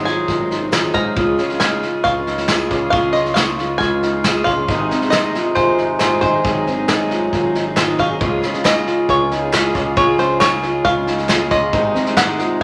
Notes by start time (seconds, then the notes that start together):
Already playing: G#1 G#2 C3 F#3 G#3 C4 D#4 C5 D#5
0.05 G#3 C4 D#4 F4 G#4 G#5 D#6, snare
0.28 G#1 F4, kick, snare
0.38 G#3 C4 D#4 G#4
0.50 D#4, snare
0.60 G#3 C4 D#4 G#4
0.71 G#2 D#3 G#3 C4 D#4 F4 G#4, snare, clap, tambourine
0.93 G#2 G#3 C4 D#4 G#4 A#5 F6, kick, snare
1.04 G#3 C4 D#4 G#4
1.15 C#2 C#3 F3 G#3 C#4 F4 G#4 C#5, kick, snare
1.38 G#3 C#4 F4 G#4, snare
1.49 C#4 F4 G#4, snare
1.59 C#3 G#3 C#4 D#4 F4 G#4 G#5 F6, snare, clap, tambourine
1.82 G#3 C#4 F4 G#4, snare
2.04 C#2 F4 F5 C#6, kick, snare
2.15 C#4 F4 G#4
2.27 D#4, snare
2.38 snare
2.48 C#3 G#3 C#4 F4 G#4, snare, clap, tambourine
2.70 C#2 G#3 C#4 F4 G#4, kick, snare
2.81 C#4 F4 G#4
2.90 C#2 C#3 G#3 C#4 F4 G#4 F5 C#6, kick, snare
3.13 G#3 C#4 F4 D#5 C6, snare
3.17 G#4
3.24 C#4 F4 G#4, snare
3.34 C#3 G#3 C#4 D#4 F4 F5 C#6, snare, clap, tambourine
3.38 G#4
3.58 G#3 C#4 F4 G#4, snare
3.78 C#2 F4 G#5 F6, kick, snare
3.90 C#4 F4 G#4
4.03 D#4, snare
4.12 C#4 F4 G#4
4.24 C#3 G#3 C#4 F4 G#4, snare, clap, tambourine
4.44 C#2 G#3 C#4 F4 F5 C6, kick, snare
4.49 G#4
4.57 C#4 F4 G#4
4.67 G#1 G#2 C3 D#3 G#3 C4 D#4 G#4 C5 D#5, kick, snare
4.90 G#3 C4 D#4 G#4, snare
5.02 G#3 C4 D#4 G#4, snare
5.10 G#2 D#3 G#3 D#4 D#5 C6, snare, clap, tambourine
5.14 C4 D#4 G#4
5.35 G#3 C4 D#4 F4 G#4, snare
5.55 G#1 F4 C5 G#5, kick, snare
5.67 G#3 C4 D#4 G#4
5.78 D#4, snare
5.99 G#2 D#3 G#3 C4 D#4 F4 G#4 C5 G#5, snare, clap, tambourine
6.21 G#1 G#3 C4 D#4 C5 G#5, kick, snare
6.26 G#4
6.33 G#3 C4 D#4 G#4
6.43 G#1 G#2 D#3 F#3 G#3 C4 D#4 G#4, kick, snare
6.66 G#3 C4 D#4 G#4, snare
6.77 G#3 C4 D#4 G#4
6.88 G#2 D#3 G#3 C4 D#4 G#4, snare, clap, tambourine
7.10 G#3 C4 D#4 F4 G#4, snare
7.33 G#1 F4, kick, snare
7.43 G#3 C4 D#4 G#4
7.55 D#4, snare
7.65 G#3 C4 D#4 G#4
7.76 G#2 D#3 G#3 C4 D#4 F4 G#4 G#5, snare, clap, tambourine
7.98 G#1 G#3 C4 D#4 G#4 F5 C#6, kick, snare
8.09 G#3 C4 D#4 G#4
8.19 C#2 C#3 F3 G#3 C#4 F4 G#4 C#5, kick, snare
8.41 G#3 C#4 F4 G#4, snare
8.52 C#4 F4 G#4, snare
8.64 C#3 G#3 C#4 D#4 F4 G#4 D#5 G#5, snare, clap, tambourine
8.85 G#3 C#4 F4 G#4, snare
9.09 C#2 F4 C#5 G#5, kick, snare
9.19 C#4 F4 G#4
9.31 D#4, snare
9.42 C#4 F4 G#4
9.52 C#3 G#3 C#4 F4 G#4, snare, clap, tambourine
9.74 C#2 G#3 C#4 F4 G#4, kick, snare
9.85 C#4 F4 G#4
9.96 C#2 C#3 G#3 C#4 F4 G#4 C#5 G#5, kick, snare
10.18 G#3 C#4 F4 G#4 C5 G#5, snare
10.29 C#4 F4 G#4
10.40 C#3 G#3 C#4 D#4 F4 G#4 C#5 G#5, snare, clap, tambourine
10.62 G#3 C#4 F4 G#4, snare
10.85 C#2 F4 F5 C#6, kick, snare
10.95 C#4 F4 G#4
11.06 D#4, snare
11.18 snare
11.29 C#3 G#3 C#4 F4 G#4, snare, clap, tambourine
11.40 C#4 F4 G#4
11.50 C#2 G#3 C#4 F4 G#4 D#5 C6, kick, snare
11.62 C#4 F4 G#4
11.71 G#1 G#2 C3 D#3 G#3 C4 D#4 G#4 C5 D#5, kick, snare
11.94 G#3 C4 D#4 G#4, snare
12.06 G#3 C4 D#4 G#4, snare
12.17 G#2 D#3 G#3 C4 D#4 G#4 F#5 D#6, snare, clap, tambourine
12.38 G#3 C4 D#4 F4 G#4, snare